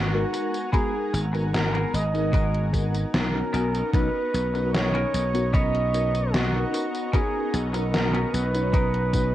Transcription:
Already playing: G#1 F#4 F#5 G#5 A#5
0.13 G#3 B3 D#4 F#4 A#4
0.33 muted clean electric guitar stroke, closed hi-hat, tambourine
0.54 closed hi-hat, tambourine
0.72 G#3 B3 D#4 F#4 G#4 A#4, kick, closed hi-hat, tambourine
1.13 G#1, muted clean electric guitar stroke, closed hi-hat, tambourine
1.33 G#3 B3 D#4 F#4 A#4, muted clean electric guitar stroke, closed hi-hat, tambourine
1.53 A#4, muted clean electric guitar stroke, snare, closed hi-hat, tambourine
1.73 B3 F#4 G#4 A#4, closed hi-hat
1.93 G#1 D#5, closed hi-hat, tambourine
2.13 G#3 B3 D#4 F#4 A#4, closed hi-hat, tambourine
2.33 B3 F#4 G#4 A#4, kick, closed hi-hat, tambourine
2.55 closed hi-hat
2.72 G#3 B3 D#4 F#4 A#4, kick, closed hi-hat, tambourine
2.95 closed hi-hat, tambourine
3.14 B1 A#4, snare, closed hi-hat, tambourine
3.33 B3 C#4 D#4 F#4 A#4
3.53 B1 B3 C#4 D#4 A#4 D#5 A#5 C#6, closed hi-hat, tambourine
3.75 closed hi-hat, tambourine
3.93 B1 B3 C#4 D#4 F#4 B4, kick, closed hi-hat, tambourine
4.34 B1, muted clean electric guitar stroke, closed hi-hat, tambourine
4.53 B3 C#4 D#4 F#4 A#4, muted clean electric guitar stroke, closed hi-hat, tambourine
4.73 C#5, muted clean electric guitar stroke, snare, closed hi-hat, tambourine
4.94 B3 C#4 D#4 A#4, closed hi-hat
5.14 B1, closed hi-hat, tambourine
5.33 B3 C#4 D#4 F#4 A#4, closed hi-hat, tambourine
5.53 B3 C#4 D#4 C#5 D#5, kick, closed hi-hat, tambourine
5.75 closed hi-hat
5.93 B3 C#4 D#4 F#4 A#4, closed hi-hat, tambourine
6.15 closed hi-hat, tambourine
6.34 F#4, snare, closed hi-hat, tambourine
6.53 B3 C#4 D#4 F#4 A#4
6.73 muted clean electric guitar stroke, closed hi-hat, tambourine
6.95 closed hi-hat, tambourine
7.13 B3 C#4 D#4 F#4 G#4 A#4, kick, closed hi-hat, tambourine
7.53 B1, muted clean electric guitar stroke, closed hi-hat, tambourine
7.73 B3 C#4 D#4 F#4 A#4, muted clean electric guitar stroke, closed hi-hat, tambourine
7.93 A#4, muted clean electric guitar stroke, snare, closed hi-hat, tambourine
8.13 B3 C#4 D#4 A#4, closed hi-hat
8.33 B1 B4, closed hi-hat, tambourine
8.54 B3 C#4 D#4 F#4 C#5, closed hi-hat, tambourine
8.73 B3 C#4 D#4 A#4, kick, closed hi-hat, tambourine
8.94 closed hi-hat
9.13 B3 C#4 D#4 F#4 B4, kick, closed hi-hat, tambourine

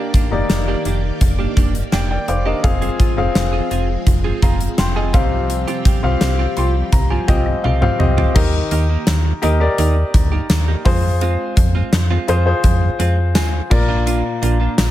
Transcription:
Already playing: D#3 A#3 D4 D#4 G4 D5
0.14 A#3 D4 G4, kick, closed hi-hat
0.31 F1 A#3 D#4 G4 D5, muted clean electric guitar stroke
0.50 F1, muted clean electric guitar stroke, snare, closed hi-hat
0.68 A#3 D4 G4
0.85 F1 A#3 D4 G4, closed hi-hat
1.03 muted clean electric guitar stroke
1.21 F1, muted clean electric guitar stroke, kick, closed hi-hat
1.39 A#3 D4 G4
1.57 F1 A#3 D4 G4, kick, closed hi-hat
1.74 muted clean electric guitar stroke, closed hi-hat
1.92 F1 A#3 D4 G4 G5, snare, closed hi-hat
2.10 D5 G5, muted clean electric guitar stroke
2.28 F1 C5 F5 D6, muted clean electric guitar stroke, closed hi-hat
2.46 A#3 D4 G4 A#4 D#5
2.63 F1 F3 G#3 C4 F4 G#4 F5, kick, closed hi-hat
2.82 C4 F4 G#4, closed hi-hat
2.99 C4 F4 G#4, kick, closed hi-hat
3.17 F1 C4 F4 G#4 F5
3.35 F1, muted clean electric guitar stroke, snare, closed hi-hat
3.53 C4 F4 G#4
3.70 F1 C4 F4 G#4, closed hi-hat
3.89 muted clean electric guitar stroke
4.07 F1, muted clean electric guitar stroke, kick, closed hi-hat
4.24 C4 F4 G#4
4.42 F1 C4 F4 G#4 F5 A#5, kick, closed hi-hat
4.61 muted clean electric guitar stroke, closed hi-hat
4.78 F1 G5 C6, muted clean electric guitar stroke, snare, closed hi-hat
4.96 C4 F4 G#4 D#5 G#5
5.13 C2 C3 G3 C4 F4 G4 F5, kick, closed hi-hat
5.32 muted clean electric guitar stroke
5.50 muted clean electric guitar stroke, closed hi-hat
5.67 C4 F4 G4, closed hi-hat
5.85 C4 F4 G4, kick, closed hi-hat
6.03 C2 C4 F4 G4 F5, muted clean electric guitar stroke
6.21 C2, muted clean electric guitar stroke, snare, closed hi-hat
6.39 C4 F4 G4
6.57 C2 C4 F4 G4 C6, closed hi-hat
6.75 muted clean electric guitar stroke
6.92 C2 A#5, muted clean electric guitar stroke, kick, closed hi-hat
7.10 C4 F4 G4 G#5
7.27 C2 C4 F4 G4 D#5 G5, kick, closed hi-hat
7.46 D#5, muted clean electric guitar stroke
7.64 C2 C4 F4 G4 F5, high tom
7.81 C4 F4 G4 F5 G5, muted clean electric guitar stroke, mid tom
7.99 C2 C4 F4 G4 D#5, muted clean electric guitar stroke, mid tom
8.17 C4 F4 G4, floor tom
8.35 D#2 D#3 A#3 D#4 G4 A#4 D#5, kick, crash
8.54 muted clean electric guitar stroke
8.71 D#2 A#3 D#4 G4, closed hi-hat
8.89 A#3 D#4 G4
9.07 D#2, snare, closed hi-hat, tambourine
9.25 muted clean electric guitar stroke
9.42 D#2 A#3 D#4 G4 A#4 D#5, closed hi-hat
9.60 G4 A#4 D5, muted clean electric guitar stroke
9.78 D#2 A#3 D#4 G4, closed hi-hat
9.96 muted clean electric guitar stroke
10.14 D2, muted clean electric guitar stroke, kick, closed hi-hat
10.32 A#3 D#4 G4
10.50 D#2, muted clean electric guitar stroke, snare, closed hi-hat, tambourine
10.68 A#3 D#4 G4
10.85 F2 G#3 C4 F4 G#4 C5, kick, open hi-hat
11.04 muted clean electric guitar stroke
11.21 G#3 C4 F4, closed hi-hat
11.57 F2, kick, closed hi-hat
11.75 G#3 C4 F4
11.93 F2, muted clean electric guitar stroke, snare, closed hi-hat, tambourine
12.10 G#3 C4 F4
12.28 F2 G#3 C4 F4 G#4 C5, closed hi-hat
12.45 F4 G#4 C5, muted clean electric guitar stroke
12.64 F2, kick, closed hi-hat
12.82 muted clean electric guitar stroke
12.99 F2 G#3 C4 F4, closed hi-hat
13.18 muted clean electric guitar stroke
13.35 D#2 G#3 C4 F4 G#5, snare, closed hi-hat, tambourine
13.53 muted clean electric guitar stroke
13.70 A#1 A#2 F4 A#4 D5 A#5, muted clean electric guitar stroke, kick, crash
13.88 A#3 D4 F4
14.06 A#3 D4 F4, closed hi-hat
14.24 muted clean electric guitar stroke
14.42 A#1 A#3 D4 F4, closed hi-hat
14.60 A#3 D4 F4
14.78 A#1, snare, closed hi-hat, tambourine

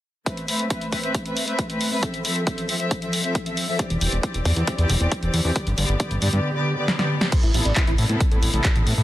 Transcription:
0.26 A3 C4 B4 E5, kick, closed hi-hat
0.37 closed hi-hat
0.48 A3 C4 B4 E5, open hi-hat
0.59 closed hi-hat
0.70 A3 C4 B4 E5, kick, closed hi-hat
0.81 closed hi-hat
0.92 A3 C4 B4 E5, kick, open hi-hat
1.03 A3 C4 B4 E5, closed hi-hat
1.15 kick, closed hi-hat
1.25 A3 C4 B4 E5, closed hi-hat
1.37 open hi-hat
1.47 A3 C4 B4 E5, closed hi-hat
1.59 kick, closed hi-hat
1.69 A3 C4 B4 E5, closed hi-hat
1.81 open hi-hat
1.92 A3 C4 B4 E5
2.03 F3 C4 A4 E5, kick, closed hi-hat
2.14 closed hi-hat
2.25 F3 C4 A4 E5, open hi-hat
2.36 closed hi-hat
2.47 F3 C4 A4 E5, kick, closed hi-hat
2.58 closed hi-hat
2.69 F3 C4 A4 E5, open hi-hat
2.80 F3 C4 A4 E5, closed hi-hat
2.91 kick, closed hi-hat
3.02 F3 C4 A4 E5, closed hi-hat
3.13 open hi-hat
3.24 F3 C4 A4 E5, closed hi-hat
3.35 kick, closed hi-hat
3.46 F3 C4 A4 E5, closed hi-hat
3.57 open hi-hat
3.68 F3 C4 A4 E5
3.79 E3 C4 G4 D5, kick, closed hi-hat
3.90 E1, closed hi-hat
4.01 E1 E3 C4 G4 D5, open hi-hat
4.12 E1, closed hi-hat
4.23 E3 C4 G4 D5, kick, closed hi-hat
4.34 E1, closed hi-hat
4.45 E2 E3 C4 G4 D5, kick, open hi-hat
4.56 E2 E3 C4 G4 D5, closed hi-hat
4.67 kick, closed hi-hat
4.78 E2 E3 C4 G4 D5, closed hi-hat
4.89 E1, open hi-hat
5.00 E1 E3 C4 G4 D5, closed hi-hat
5.12 kick, closed hi-hat
5.23 E1 E3 C4 G4 D5, closed hi-hat
5.34 E2, open hi-hat
5.45 E2 E3 C4 G4 D5
5.56 D3 B3 G4 D5, kick, closed hi-hat
5.67 G1, closed hi-hat
5.78 G1 D3 B3 G4 D5, open hi-hat
5.89 G1
6.00 D3 B3 G4 D5, kick, closed hi-hat
6.11 G1, closed hi-hat
6.22 G2 D3 B3 G4 D5, open hi-hat
6.33 G2 D3 B3 G4 D5, closed hi-hat
6.55 D3 B3 G4 D5
6.77 D3 B3 G4 D5
6.88 snare
6.99 D3 B3 G4 D5, snare
7.21 D3 B3 G4 D5, snare
7.32 C3 B3 E4 A4 C5, kick, closed hi-hat, crash
7.43 A1 E4, closed hi-hat
7.54 A1 C3 B3 E4 A4, open hi-hat
7.65 A1 D5, closed hi-hat
7.76 C3 B3 E4 A4, kick, clap, closed hi-hat
7.87 A1 E4, closed hi-hat
7.98 A2 C3 B3 E4 A4, open hi-hat
8.09 A2 C3 B3 E4 A4, closed hi-hat
8.21 kick, closed hi-hat
8.31 A2 C3 B3 E4 A4, closed hi-hat
8.42 A1, open hi-hat
8.53 A1 C3 B3 E4 A4, closed hi-hat
8.65 kick, clap, closed hi-hat
8.76 A1 C3 B3 E4 A4, closed hi-hat
8.87 A2, open hi-hat
8.97 A2 C3 B3 E4 A4

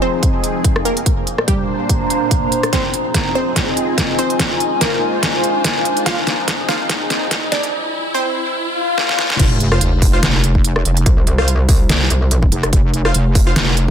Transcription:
Already playing: F3 C4 D#4 F4 G#4 D#5 G#5, riser
0.02 C4 C5
0.23 kick, closed hi-hat
0.44 closed hi-hat
0.64 kick, closed hi-hat
0.76 cross-stick
0.85 A#3 A#4, closed hi-hat
0.97 closed hi-hat
1.06 A#2 A#3 D4 C5, kick, closed hi-hat
1.22 A#5
1.27 closed hi-hat
1.38 cross-stick
1.48 G3 G4, kick, closed hi-hat
1.60 C5
1.89 kick, closed hi-hat
2.10 closed hi-hat
2.31 kick, closed hi-hat
2.52 closed hi-hat
2.63 cross-stick, closed hi-hat
2.73 F3 C4 D#4 F4 G#4 C5, kick, snare, closed hi-hat
2.88 D#5
2.94 closed hi-hat
3.14 kick, snare, closed hi-hat
3.35 C4 C5
3.49 G#5
3.56 kick, snare, closed hi-hat
3.77 closed hi-hat
3.98 kick, snare, closed hi-hat
4.19 C4 C5, closed hi-hat
4.30 closed hi-hat
4.39 G#3 F4 C5, kick, snare, closed hi-hat
4.48 C5
4.60 closed hi-hat
4.81 A#3 A#4, kick, snare, closed hi-hat
5.23 kick, snare, closed hi-hat
5.44 closed hi-hat
5.64 kick, snare, closed hi-hat
5.85 closed hi-hat
5.97 closed hi-hat
6.06 F3 C4 D#4 F4 G#4 F5, kick, snare, closed hi-hat
6.27 snare, closed hi-hat
6.48 kick, snare, closed hi-hat
6.60 D#5
6.69 F4 F5, snare
6.89 kick, snare, closed hi-hat
7.10 snare, closed hi-hat
7.31 kick, snare, closed hi-hat
7.52 D4 D5, snare, closed hi-hat
7.63 closed hi-hat
8.14 C4 C5
8.56 swell
8.98 snare
9.09 snare
9.19 snare
9.30 snare
9.39 F1, kick, closed hi-hat, crash, sub drop
9.60 closed hi-hat
9.72 F4 C5 F5, cross-stick
9.81 F1, closed hi-hat
10.02 kick, open hi-hat
10.13 F4 C5 F5
10.23 F1, snare, closed hi-hat
10.44 closed hi-hat
10.55 kick
10.64 closed hi-hat
10.76 cross-stick
10.85 F1, closed hi-hat
10.97 closed hi-hat
11.06 C2, kick, closed hi-hat
11.27 C2, closed hi-hat
11.38 F4 C5 F5, cross-stick
11.48 closed hi-hat
11.69 C2, kick, open hi-hat
11.89 snare, closed hi-hat
12.10 C2, closed hi-hat
12.31 closed hi-hat
12.43 kick
12.52 F1, closed hi-hat
12.63 cross-stick, closed hi-hat
12.73 F1, kick, closed hi-hat
12.94 closed hi-hat
13.05 F4 C5 F5, cross-stick
13.14 F1, closed hi-hat
13.35 kick, open hi-hat
13.47 F4 C5 F5
13.56 F1, snare, closed hi-hat
13.77 closed hi-hat

